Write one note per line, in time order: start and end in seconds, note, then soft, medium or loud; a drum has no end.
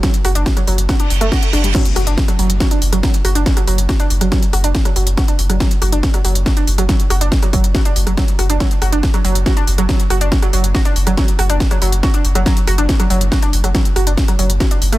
0.03 0.13 F#3 medium
0.03 kick loud
0.03 snare loud
0.03 closed hi-hat medium
0.14 closed hi-hat medium
0.25 0.35 F#1 medium
0.25 0.29 F#4 medium
0.25 cross-stick medium
0.25 open hi-hat loud
0.35 0.46 F#1 medium
0.35 0.42 D4 medium
0.35 closed hi-hat medium
0.46 kick loud
0.46 snare loud
0.46 closed hi-hat medium
0.57 0.61 F#3 medium
0.57 cross-stick medium
0.57 closed hi-hat medium
0.67 0.78 F#1 loud
0.67 0.78 F#3 medium
0.67 open hi-hat loud
0.78 0.89 F#1 medium
0.78 closed hi-hat medium
0.89 0.93 F#4 medium
0.89 kick loud
0.89 cross-stick medium
0.89 snare loud
0.89 closed hi-hat medium
0.89 reverse cymbal medium
1.00 1.06 D4 medium
1.00 closed hi-hat medium
1.10 1.20 F#1 loud
1.10 open hi-hat loud
1.21 1.32 F#1 medium
1.21 1.28 A3 loud
1.21 cross-stick medium
1.21 closed hi-hat medium
1.32 1.39 F#4 loud
1.32 kick loud
1.32 snare loud
1.32 open hi-hat medium
1.43 closed hi-hat medium
1.53 1.63 F#1 loud
1.53 1.60 D4 loud
1.53 cross-stick medium
1.53 open hi-hat loud
1.64 1.74 F#1 medium
1.64 1.68 G3 medium
1.64 closed hi-hat medium
1.75 1.85 F#3 medium
1.75 kick loud
1.75 snare loud
1.75 closed hi-hat medium
1.75 crash loud
1.75 impact medium
1.85 closed hi-hat medium
1.96 2.06 F#1 loud
1.96 2.00 F#4 medium
1.96 cross-stick medium
1.96 open hi-hat loud
2.07 2.17 F#1 medium
2.07 2.14 D4 medium
2.07 closed hi-hat medium
2.17 kick loud
2.17 snare loud
2.17 closed hi-hat medium
2.28 2.32 F#3 medium
2.28 cross-stick medium
2.28 closed hi-hat medium
2.39 2.49 F#1 loud
2.39 2.49 F#3 medium
2.39 open hi-hat loud
2.50 2.60 F#1 medium
2.50 closed hi-hat medium
2.60 2.64 F#4 medium
2.60 kick loud
2.60 cross-stick medium
2.60 snare loud
2.60 closed hi-hat medium
2.71 2.78 D4 medium
2.71 closed hi-hat medium
2.82 2.92 F#1 loud
2.82 open hi-hat loud
2.93 3.03 F#1 medium
2.93 2.97 F#3 medium
2.93 cross-stick medium
2.93 closed hi-hat medium
3.03 3.13 F#3 medium
3.03 kick loud
3.03 snare loud
3.03 closed hi-hat medium
3.14 closed hi-hat medium
3.25 3.35 F#1 loud
3.25 3.29 F#4 medium
3.25 cross-stick medium
3.25 open hi-hat loud
3.35 3.46 F#1 medium
3.35 3.42 D4 medium
3.35 closed hi-hat medium
3.46 kick loud
3.46 snare loud
3.46 closed hi-hat medium
3.57 3.61 F#3 medium
3.57 cross-stick medium
3.57 closed hi-hat medium
3.67 3.78 F#1 loud
3.67 3.78 F#3 medium
3.67 open hi-hat loud
3.78 3.89 F#1 medium
3.78 closed hi-hat medium
3.89 3.93 F#4 medium
3.89 kick loud
3.89 cross-stick medium
3.89 snare loud
3.89 closed hi-hat medium
4.00 4.06 D4 medium
4.00 closed hi-hat medium
4.10 4.20 F#1 loud
4.10 open hi-hat loud
4.21 4.32 F#1 medium
4.21 4.25 F#3 medium
4.21 cross-stick medium
4.21 closed hi-hat medium
4.32 4.42 F#3 medium
4.32 kick loud
4.32 snare loud
4.32 closed hi-hat medium
4.42 closed hi-hat medium
4.53 4.63 F#1 loud
4.53 4.57 F#4 medium
4.53 cross-stick medium
4.53 open hi-hat loud
4.64 4.74 F#1 medium
4.64 4.71 D4 medium
4.64 closed hi-hat medium
4.75 kick loud
4.75 snare loud
4.75 closed hi-hat medium
4.85 4.89 F#3 medium
4.85 cross-stick medium
4.85 closed hi-hat medium
4.96 5.06 F#1 loud
4.96 5.06 F#3 medium
4.96 open hi-hat loud
5.07 5.17 F#1 medium
5.07 closed hi-hat medium
5.17 5.22 F#4 medium
5.17 kick loud
5.17 cross-stick medium
5.17 snare loud
5.17 closed hi-hat medium
5.28 5.35 D4 medium
5.28 closed hi-hat medium
5.39 5.49 F#1 loud
5.39 open hi-hat loud
5.50 5.60 F#1 medium
5.50 5.54 F#3 medium
5.50 cross-stick medium
5.50 closed hi-hat medium
5.60 5.71 F#3 medium
5.60 kick loud
5.60 snare loud
5.60 closed hi-hat medium
5.71 closed hi-hat medium
5.82 5.92 F#1 loud
5.82 5.86 F#4 medium
5.82 cross-stick medium
5.82 open hi-hat loud
5.92 6.03 F#1 medium
5.92 5.99 D4 medium
5.92 closed hi-hat medium
6.03 kick loud
6.03 snare loud
6.03 closed hi-hat medium
6.14 6.18 F#3 medium
6.14 cross-stick medium
6.14 closed hi-hat medium
6.25 6.35 F#1 loud
6.25 6.35 F#3 medium
6.25 open hi-hat loud
6.35 6.46 F#1 medium
6.35 closed hi-hat medium
6.46 6.50 F#4 medium
6.46 kick loud
6.46 cross-stick medium
6.46 snare loud
6.46 closed hi-hat medium
6.57 6.64 D4 medium
6.57 closed hi-hat medium
6.67 6.78 F#1 loud
6.67 open hi-hat loud
6.78 6.89 F#1 medium
6.78 6.82 F#3 medium
6.78 cross-stick medium
6.78 closed hi-hat medium
6.89 6.99 F#3 medium
6.89 kick loud
6.89 snare loud
6.89 closed hi-hat medium
7.00 closed hi-hat medium
7.10 7.20 F#1 loud
7.10 7.14 F#4 medium
7.10 cross-stick medium
7.10 open hi-hat loud
7.21 7.32 F#1 medium
7.21 7.28 D4 medium
7.21 closed hi-hat medium
7.32 kick loud
7.32 snare loud
7.32 closed hi-hat medium
7.42 7.47 F#3 medium
7.42 cross-stick medium
7.42 closed hi-hat medium
7.53 7.63 F#1 loud
7.53 7.63 F#3 medium
7.53 kick medium
7.53 open hi-hat loud
7.64 7.74 F#1 medium
7.64 closed hi-hat medium
7.75 7.79 F#4 medium
7.75 kick loud
7.75 cross-stick medium
7.75 snare loud
7.75 closed hi-hat medium
7.85 7.92 D4 medium
7.85 closed hi-hat medium
7.96 8.06 F#1 loud
7.96 open hi-hat loud
8.07 8.17 F#1 medium
8.07 8.11 F#3 medium
8.07 cross-stick medium
8.07 closed hi-hat medium
8.17 8.28 F#3 medium
8.17 kick loud
8.17 snare loud
8.17 closed hi-hat medium
8.28 closed hi-hat medium
8.39 8.49 F#1 loud
8.39 8.43 F#4 medium
8.39 cross-stick medium
8.39 open hi-hat loud
8.50 8.60 F#1 medium
8.50 8.56 D4 medium
8.50 closed hi-hat medium
8.60 8.70 F#3 medium
8.60 kick loud
8.60 snare loud
8.60 closed hi-hat medium
8.71 closed hi-hat medium
8.82 8.92 F#1 loud
8.82 8.86 F#4 medium
8.82 cross-stick medium
8.82 open hi-hat loud
8.92 9.03 F#1 medium
8.92 8.99 D4 medium
8.92 closed hi-hat medium
9.03 kick loud
9.03 snare loud
9.03 closed hi-hat medium
9.14 9.18 F#3 medium
9.14 cross-stick medium
9.14 closed hi-hat medium
9.25 9.35 F#1 loud
9.25 9.35 F#3 medium
9.25 open hi-hat loud
9.35 9.46 F#1 medium
9.35 closed hi-hat medium
9.46 9.50 F#4 medium
9.46 kick loud
9.46 cross-stick medium
9.46 snare loud
9.46 closed hi-hat medium
9.57 9.64 D4 medium
9.57 closed hi-hat medium
9.67 9.78 F#1 loud
9.67 open hi-hat loud
9.78 9.89 F#1 medium
9.78 9.82 F#3 medium
9.78 cross-stick medium
9.78 closed hi-hat medium
9.89 9.99 F#3 medium
9.89 kick loud
9.89 snare loud
9.89 closed hi-hat medium
10.00 closed hi-hat medium
10.10 10.20 F#1 loud
10.10 10.14 F#4 medium
10.10 cross-stick medium
10.10 open hi-hat loud
10.21 10.32 F#1 medium
10.21 10.28 D4 medium
10.21 closed hi-hat medium
10.32 kick loud
10.32 snare loud
10.32 closed hi-hat medium
10.42 10.47 F#3 medium
10.42 cross-stick medium
10.42 closed hi-hat medium
10.53 10.63 F#1 loud
10.53 10.63 F#3 medium
10.53 open hi-hat loud
10.64 10.74 F#1 medium
10.64 closed hi-hat medium
10.75 10.79 F#4 medium
10.75 kick loud
10.75 cross-stick medium
10.75 snare loud
10.75 closed hi-hat medium
10.85 10.92 D4 medium
10.85 closed hi-hat medium
10.96 11.06 F#1 loud
10.96 open hi-hat loud
11.07 11.17 F#1 medium
11.07 11.11 F#3 medium
11.07 cross-stick medium
11.07 closed hi-hat medium
11.17 11.28 F#3 medium
11.17 kick loud
11.17 snare loud
11.17 closed hi-hat medium
11.28 closed hi-hat medium
11.39 11.49 F#1 loud
11.39 11.43 F#4 medium
11.39 cross-stick medium
11.39 open hi-hat loud
11.50 11.60 F#1 medium
11.50 11.56 D4 medium
11.50 closed hi-hat medium
11.60 kick loud
11.60 snare loud
11.60 closed hi-hat medium
11.71 11.75 F#3 medium
11.71 cross-stick medium
11.71 closed hi-hat medium
11.82 11.92 F#1 loud
11.82 11.92 F#3 medium
11.82 open hi-hat loud
11.92 12.03 F#1 medium
11.92 closed hi-hat medium
12.03 12.07 F#4 medium
12.03 kick loud
12.03 cross-stick medium
12.03 snare loud
12.03 closed hi-hat medium
12.14 12.21 D4 medium
12.14 closed hi-hat medium
12.25 12.35 F#1 loud
12.25 open hi-hat loud
12.35 12.46 F#1 medium
12.35 12.39 F#3 medium
12.35 cross-stick medium
12.35 closed hi-hat medium
12.46 12.56 F#3 medium
12.46 kick loud
12.46 snare loud
12.46 closed hi-hat medium
12.57 closed hi-hat medium
12.67 12.78 F#1 loud
12.67 12.72 F#4 medium
12.67 cross-stick medium
12.67 open hi-hat loud
12.78 12.89 F#1 medium
12.78 12.85 D4 medium
12.78 closed hi-hat medium
12.89 kick loud
12.89 snare loud
12.89 closed hi-hat medium
13.00 13.04 F#3 medium
13.00 cross-stick medium
13.00 closed hi-hat medium
13.10 13.20 F#1 loud
13.10 13.20 F#3 medium
13.10 open hi-hat loud
13.21 13.32 F#1 medium
13.21 closed hi-hat medium
13.32 13.36 F#4 medium
13.32 kick loud
13.32 cross-stick medium
13.32 snare loud
13.32 closed hi-hat medium
13.42 13.49 D4 medium
13.42 closed hi-hat medium
13.53 13.63 F#1 loud
13.53 open hi-hat loud
13.64 13.74 F#1 medium
13.64 13.68 F#3 medium
13.64 cross-stick medium
13.64 closed hi-hat medium
13.75 13.85 F#3 medium
13.75 kick loud
13.75 snare loud
13.75 closed hi-hat medium
13.85 closed hi-hat medium
13.96 14.06 F#1 loud
13.96 14.00 F#4 medium
13.96 cross-stick medium
13.96 open hi-hat loud
14.07 14.17 F#1 medium
14.07 14.14 D4 medium
14.07 closed hi-hat medium
14.17 kick loud
14.17 snare loud
14.17 closed hi-hat medium
14.28 14.32 F#3 medium
14.28 cross-stick medium
14.28 closed hi-hat medium
14.39 14.49 F#1 loud
14.39 14.49 F#3 medium
14.39 open hi-hat loud
14.50 14.60 F#1 medium
14.50 closed hi-hat medium
14.60 14.64 F#4 medium
14.60 kick loud
14.60 cross-stick medium
14.60 snare loud
14.60 closed hi-hat medium
14.71 14.78 D4 medium
14.71 closed hi-hat medium
14.82 14.92 F#1 loud
14.82 open hi-hat loud
14.92 14.98 F#1 medium
14.92 14.98 A3 loud
14.92 cross-stick medium
14.92 closed hi-hat medium